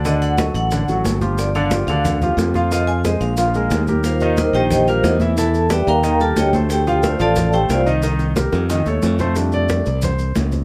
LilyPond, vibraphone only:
\new Staff \with { instrumentName = "Vibraphone" } { \time 4/4 \key d \phrygian \tempo 4 = 180 ees''8 fis''8 ees''8 fis''4. r4 | d''8 f''8 d''8 f''4. r4 | ees''8 aes''8 ees''8 f''4. r4 | <f' bes' c'' f''>4 <ees' bes' c'' ees''>8 <g' c'' ees'' g''>4 <f' bes' c'' f''>8 <ees' bes' c'' ees''>8 r8 |
<a' a''>4 <g' d'' e'' g''>8 <bes' f'' g'' bes''>4 <a' a''>8 <g' des'' ees'' g''>8 r8 | <g' g''>4 <f' c'' d'' f''>8 <a' d'' f'' a''>4 <g' g''>8 <f' c'' d'' f''>8 r8 | r1 | \key f \major r1 | }